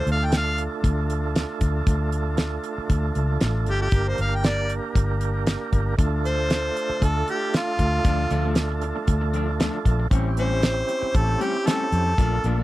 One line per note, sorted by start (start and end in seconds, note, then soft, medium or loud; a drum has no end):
0.00 3.89 A3 medium
0.00 3.89 D4 medium
0.00 3.90 F4 medium
0.00 3.90 A4 medium
0.07 0.67 D2 medium
0.07 closed hi-hat medium
0.12 0.26 F5 medium
0.25 0.34 G5 medium
0.32 snare loud
0.32 closed hi-hat medium
0.37 0.60 F5 medium
0.58 closed hi-hat medium
0.83 1.44 D2 medium
0.83 kick medium
0.83 closed hi-hat medium
1.10 closed hi-hat medium
1.35 snare loud
1.35 closed hi-hat medium
1.61 1.81 D2 medium
1.61 kick medium
1.61 closed hi-hat medium
1.87 2.57 D2 medium
1.87 kick medium
1.87 closed hi-hat medium
2.12 closed hi-hat medium
2.37 snare loud
2.37 closed hi-hat medium
2.64 closed hi-hat medium
2.78 muted fingered electric bass stroke soft
2.90 3.10 D2 medium
2.90 kick medium
2.90 closed hi-hat medium
3.15 3.39 C#2 medium
3.15 closed hi-hat medium
3.41 3.65 A1 medium
3.41 snare loud
3.41 closed hi-hat medium
3.66 3.90 G1 medium
3.66 3.81 G4 medium
3.66 closed hi-hat medium
3.82 4.10 G4 medium
3.91 4.13 G1 medium
3.91 5.95 A#3 medium
3.91 5.95 D4 medium
3.91 5.96 G4 medium
3.91 5.96 A#4 medium
3.91 kick medium
3.91 closed hi-hat medium
4.08 4.19 C5 medium
4.18 4.79 G1 medium
4.18 4.36 F5 medium
4.18 closed hi-hat medium
4.35 4.48 G5 medium
4.44 4.71 D5 medium
4.44 snare loud
4.44 closed hi-hat medium
4.70 closed hi-hat medium
4.95 5.56 G1 medium
4.95 kick medium
4.95 closed hi-hat medium
5.21 closed hi-hat medium
5.47 snare loud
5.47 closed hi-hat medium
5.73 5.93 G1 medium
5.73 kick medium
5.73 closed hi-hat medium
5.97 6.69 D2 medium
5.97 10.07 A3 medium
5.97 10.07 D4 medium
5.97 10.08 F4 medium
5.97 10.08 A4 medium
5.97 kick loud
5.97 closed hi-hat medium
6.25 7.05 C5 loud
6.25 closed hi-hat medium
6.50 snare loud
6.50 closed hi-hat medium
6.77 closed hi-hat medium
6.90 muted fingered electric bass stroke soft
7.02 7.22 D2 loud
7.02 7.28 A4 medium
7.02 kick medium
7.02 closed hi-hat medium
7.28 7.54 G4 medium
7.28 closed hi-hat medium
7.54 8.56 F4 loud
7.54 snare loud
7.54 closed hi-hat medium
7.79 7.99 D2 medium
7.79 kick medium
7.79 closed hi-hat medium
8.04 8.25 D2 medium
8.04 8.21 D3 medium
8.04 8.21 F3 medium
8.04 8.22 A3 medium
8.04 8.22 D4 medium
8.04 kick loud
8.04 closed hi-hat medium
8.30 8.91 D2 medium
8.30 8.44 D3 medium
8.30 8.45 F3 medium
8.30 8.44 A3 medium
8.30 8.43 D4 medium
8.30 closed hi-hat medium
8.45 8.56 F3 soft
8.45 8.56 A3 soft
8.45 8.57 D4 medium
8.55 muted clean electric guitar stroke soft
8.55 snare loud
8.55 closed hi-hat medium
8.71 muted clean electric guitar stroke soft
8.81 muted clean electric guitar stroke soft
8.81 closed hi-hat medium
8.96 muted clean electric guitar stroke soft
9.07 9.68 D2 medium
9.07 kick medium
9.07 closed hi-hat medium
9.21 muted clean electric guitar stroke soft
9.34 9.47 D3 medium
9.34 9.48 F3 medium
9.34 9.47 A3 medium
9.34 9.47 D4 medium
9.34 closed hi-hat medium
9.48 muted clean electric guitar stroke medium
9.60 9.76 D3 medium
9.60 9.76 F3 medium
9.60 9.76 A3 medium
9.60 9.77 D4 medium
9.60 snare loud
9.60 closed hi-hat medium
9.85 10.06 A#1 loud
9.85 muted clean electric guitar stroke soft
9.85 kick medium
9.85 closed hi-hat medium
9.99 muted clean electric guitar stroke soft
10.10 10.82 A1 medium
10.10 10.28 A2 medium
10.10 10.28 G3 medium
10.10 12.14 C4 medium
10.10 10.28 C4 medium
10.10 12.14 C#4 medium
10.10 10.28 C#4 loud
10.10 12.15 E4 medium
10.10 12.15 G4 medium
10.10 kick loud
10.10 closed hi-hat medium
10.37 10.51 A2 medium
10.37 10.52 G3 medium
10.37 10.51 C4 medium
10.37 10.49 C#4 medium
10.37 11.18 C5 medium
10.37 closed hi-hat medium
10.51 10.63 G3 soft
10.51 10.63 C4 soft
10.51 10.63 C#4 medium
10.63 muted clean electric guitar stroke soft
10.63 snare loud
10.63 closed hi-hat medium
10.77 muted clean electric guitar stroke soft
10.89 muted clean electric guitar stroke soft
10.89 closed hi-hat medium
11.02 muted clean electric guitar stroke soft
11.02 muted fingered electric bass stroke soft
11.14 11.35 A1 loud
11.14 11.43 A4 medium
11.14 kick medium
11.14 closed hi-hat medium
11.28 muted clean electric guitar stroke soft
11.40 11.54 A2 medium
11.40 11.54 G3 medium
11.40 11.53 C4 medium
11.40 11.53 C#4 medium
11.40 11.69 G4 medium
11.40 closed hi-hat medium
11.54 muted clean electric guitar stroke soft
11.66 11.82 A2 medium
11.66 11.83 G3 medium
11.66 11.83 C4 medium
11.66 11.83 C#4 medium
11.66 12.63 A4 medium
11.66 snare loud
11.66 closed hi-hat medium
11.92 12.13 F2 medium
11.92 muted clean electric guitar stroke soft
11.92 closed hi-hat medium
12.06 muted clean electric guitar stroke soft
12.17 12.38 A#1 medium
12.17 12.34 A#2 medium
12.17 12.35 F3 medium
12.17 12.35 A3 medium
12.17 12.63 A#3 medium
12.17 12.63 D4 medium
12.17 12.35 D4 medium
12.17 12.63 F4 medium
12.17 12.63 A4 medium
12.17 kick loud
12.17 closed hi-hat medium
12.44 12.63 A#1 medium
12.44 12.58 A#2 medium
12.44 12.58 F3 medium
12.44 12.57 A3 medium
12.44 12.56 D4 medium
12.44 closed hi-hat medium
12.57 12.63 F3 soft
12.57 12.63 A3 medium
12.57 12.63 D4 medium